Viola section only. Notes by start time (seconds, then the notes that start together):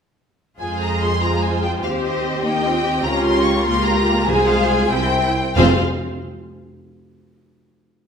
0.60 G#3 F4
1.22 F4
1.83 C4 G4
2.44 A#3 G4
2.65 C4
2.85 C4
3.06 C#4 F4
3.67 A#3
4.28 G#3 F4
4.91 C4 E4
5.56 C4 F4